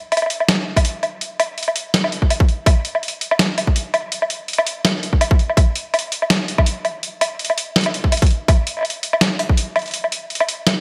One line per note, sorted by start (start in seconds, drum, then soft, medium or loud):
0.12 closed hi-hat soft
0.12 low woodblock medium
0.17 closed hi-hat medium
0.17 low woodblock medium
0.22 low woodblock medium
0.26 closed hi-hat medium
0.26 low woodblock soft
0.40 low woodblock soft
0.49 snare loud
0.49 closed hi-hat medium
0.76 kick medium
0.76 closed hi-hat medium
0.76 low woodblock medium
0.85 closed hi-hat medium
1.03 closed hi-hat soft
1.03 low woodblock medium
1.21 closed hi-hat medium
1.40 closed hi-hat medium
1.40 low woodblock medium
1.58 closed hi-hat soft
1.63 closed hi-hat medium
1.68 low woodblock medium
1.76 closed hi-hat medium
1.94 snare loud
1.94 closed hi-hat medium
2.04 low woodblock medium
2.12 closed hi-hat medium
2.22 kick medium
2.30 closed hi-hat medium
2.30 low woodblock medium
2.40 kick loud
2.49 closed hi-hat soft
2.66 kick loud
2.66 closed hi-hat medium
2.66 low woodblock medium
2.85 closed hi-hat medium
2.95 low woodblock medium
3.03 closed hi-hat soft
3.08 closed hi-hat medium
3.21 closed hi-hat medium
3.31 low woodblock medium
3.39 snare loud
3.39 closed hi-hat medium
3.58 closed hi-hat medium
3.58 low woodblock medium
3.67 kick medium
3.76 closed hi-hat medium
3.94 closed hi-hat soft
3.94 low woodblock medium
4.12 closed hi-hat medium
4.22 low woodblock medium
4.30 closed hi-hat medium
4.48 closed hi-hat soft
4.53 closed hi-hat medium
4.58 low woodblock medium
4.67 closed hi-hat medium
4.85 snare loud
4.85 closed hi-hat medium
4.85 low woodblock medium
5.03 closed hi-hat medium
5.13 kick medium
5.21 closed hi-hat medium
5.21 low woodblock medium
5.31 kick loud
5.39 closed hi-hat soft
5.50 low woodblock medium
5.57 kick loud
5.57 closed hi-hat medium
5.57 low woodblock medium
5.76 closed hi-hat medium
5.94 closed hi-hat soft
5.94 low woodblock medium
5.99 closed hi-hat medium
6.12 closed hi-hat medium
6.22 low woodblock medium
6.30 snare loud
6.30 closed hi-hat medium
6.48 closed hi-hat medium
6.58 kick medium
6.58 low woodblock medium
6.66 closed hi-hat medium
6.85 closed hi-hat soft
6.85 low woodblock medium
7.03 closed hi-hat medium
7.21 closed hi-hat medium
7.21 low woodblock medium
7.39 closed hi-hat medium
7.45 closed hi-hat medium
7.50 low woodblock medium
7.58 closed hi-hat medium
7.76 snare loud
7.76 closed hi-hat soft
7.78 closed hi-hat soft
7.81 closed hi-hat medium
7.84 closed hi-hat medium
7.84 low woodblock medium
7.94 closed hi-hat medium
8.04 kick medium
8.12 closed hi-hat medium
8.12 low woodblock medium
8.17 closed hi-hat medium
8.22 kick loud
8.22 closed hi-hat medium
8.26 closed hi-hat soft
8.31 closed hi-hat soft
8.48 kick loud
8.48 closed hi-hat medium
8.48 low woodblock medium
8.67 closed hi-hat medium
8.77 low woodblock soft
8.79 low woodblock soft
8.81 low woodblock soft
8.83 closed hi-hat soft
8.83 low woodblock soft
8.90 closed hi-hat medium
9.03 closed hi-hat medium
9.13 low woodblock medium
9.21 snare loud
9.21 closed hi-hat medium
9.39 closed hi-hat medium
9.39 low woodblock soft
9.49 kick medium
9.57 closed hi-hat medium
9.76 closed hi-hat soft
9.76 low woodblock medium
9.79 closed hi-hat soft
9.82 closed hi-hat soft
9.86 closed hi-hat soft
9.88 closed hi-hat soft
9.91 closed hi-hat soft
9.94 closed hi-hat medium
10.04 low woodblock medium
10.12 closed hi-hat medium
10.30 closed hi-hat soft
10.35 closed hi-hat medium
10.40 low woodblock medium
10.49 closed hi-hat medium
10.67 snare loud
10.67 closed hi-hat medium
10.67 low woodblock medium